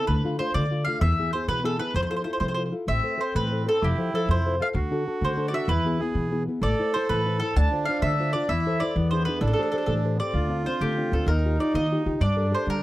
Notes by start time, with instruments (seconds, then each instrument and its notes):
0.07 upright bass D2, nylon-string guitar D3, mandolin B4
0.24 nylon-string guitar A3 D4 F4
0.39 nylon-string guitar A3 D4 F4, mandolin C5
0.54 upright bass D3, nylon-string guitar A3, mandolin D5
0.70 nylon-string guitar A3 D4 F4
0.85 nylon-string guitar A3 D4 F4, mandolin F5
1.01 upright bass E2, nylon-string guitar E3, mandolin E5
1.19 nylon-string guitar B3 E4 G#4
1.33 nylon-string guitar B3 E4 G#4, mandolin C5
1.48 nylon-string guitar B2, upright bass E3, mandolin B4
1.64 nylon-string guitar B3 E4 G#4, mandolin A4
1.79 nylon-string guitar B3 E4 G#4, mandolin B4
1.94 upright bass F2, nylon-string guitar F3, mandolin C5
2.02 mandolin C5
2.10 nylon-string guitar E4 F4 A4, mandolin C5
2.16 mandolin C5
2.24 nylon-string guitar E4 F4 A4, mandolin C5
2.33 mandolin C5
2.40 nylon-string guitar C3, upright bass F3, mandolin C5
2.48 mandolin C5
2.54 nylon-string guitar E4 F4 A4, mandolin C5
2.72 nylon-string guitar E4 F4 A4
2.87 upright bass A1, nylon-string guitar A3, accordion C4, mandolin E5
3.03 nylon-string guitar A4 B4 C5
3.18 nylon-string guitar A4 B4 C5, mandolin C5
3.35 upright bass A2, nylon-string guitar E3, mandolin B4
3.51 nylon-string guitar A4 B4 C5
3.66 nylon-string guitar A4 B4 C5, mandolin A4
3.82 upright bass F1, nylon-string guitar F3, accordion E4, mandolin G4
3.98 nylon-string guitar F3 A4 C5
4.14 nylon-string guitar F3 A4 C5, mandolin A4
4.28 upright bass F2, nylon-string guitar C3, mandolin C5
4.45 nylon-string guitar F4 A4 C5
4.59 accordion F4, nylon-string guitar F4 A4 C5, mandolin F5
4.74 upright bass D2, nylon-string guitar D3, accordion F#4
4.91 nylon-string guitar D4 F#4 A4
5.07 nylon-string guitar D4 F#4 A4
5.21 upright bass D3, nylon-string guitar A3, mandolin C5
5.37 nylon-string guitar D4 F#4 A4
5.48 mandolin D5
5.53 nylon-string guitar D4 F#4 A4, mandolin E5
5.68 upright bass E2, nylon-string guitar E3, accordion E4, mandolin B4
5.85 nylon-string guitar B3 E4 G#4
6.00 nylon-string guitar B3 E4 G#4, accordion G#4
6.15 nylon-string guitar B2, upright bass E3
6.32 nylon-string guitar B3 E4 G#4
6.48 nylon-string guitar B3 E4 G#4
6.62 upright bass A1, nylon-string guitar A3, accordion A4, mandolin D5
6.79 nylon-string guitar E4 A4 C5
6.94 nylon-string guitar E4 A4 C5, mandolin C5
7.09 upright bass A2, nylon-string guitar E3, mandolin B4
7.26 nylon-string guitar E4 A4 C5
7.40 nylon-string guitar E4 A4 C5, mandolin A4
7.56 upright bass D2, nylon-string guitar D3, accordion D4, mandolin A5
7.71 nylon-string guitar D4 F4 C5
7.85 nylon-string guitar D4 F4, mandolin F5
7.90 nylon-string guitar C5
8.02 upright bass D3, nylon-string guitar A3, mandolin E5
8.19 nylon-string guitar D4 F4 C5
8.33 nylon-string guitar D4 F4 C5, mandolin D5
8.49 upright bass E2, nylon-string guitar E3, accordion E4, mandolin E5
8.66 nylon-string guitar E4 A4 C5
8.80 nylon-string guitar E4 A4 C5, mandolin D5
8.95 upright bass E2, nylon-string guitar E3, accordion B3
9.11 nylon-string guitar D4 E4 G#4, mandolin C5
9.25 nylon-string guitar D4 E4 G#4, mandolin B4
9.41 upright bass A1, nylon-string guitar A3, accordion D4, mandolin A4
9.47 mandolin A4
9.53 mandolin A4
9.59 nylon-string guitar G4 A4 C5
9.63 mandolin A4
9.72 nylon-string guitar G4 A4 C5, mandolin A4
9.78 mandolin A4
9.86 upright bass A2, nylon-string guitar E3, mandolin A4
10.04 nylon-string guitar G4 A4 C5
10.15 accordion B3 C4
10.20 nylon-string guitar G4 A4 C5, mandolin D5
10.33 upright bass D2, nylon-string guitar D3, accordion F4
10.49 nylon-string guitar C4 D4 F4
10.66 nylon-string guitar C4 D4 F4, mandolin C5
10.81 upright bass D3, nylon-string guitar A3, mandolin G4
10.98 nylon-string guitar C4 D4 F4
11.12 upright bass D2, nylon-string guitar C4 D4 F4, mandolin A4
11.26 upright bass D#2, nylon-string guitar D#3, accordion D#4, mandolin A#4
11.45 nylon-string guitar D#4 F4 G4
11.60 nylon-string guitar D#4 F4 G4, mandolin D5
11.74 upright bass D#3, nylon-string guitar A#3, mandolin D#5
11.92 nylon-string guitar D#4 F4 G4
12.06 upright bass D#3, nylon-string guitar D#4 F4 G4
12.21 upright bass G2, nylon-string guitar G3, accordion D4, mandolin D5
12.37 nylon-string guitar G4 A4 A#4
12.51 nylon-string guitar G4 A4 A#4, mandolin C5
12.66 nylon-string guitar D3, upright bass G3, mandolin A#4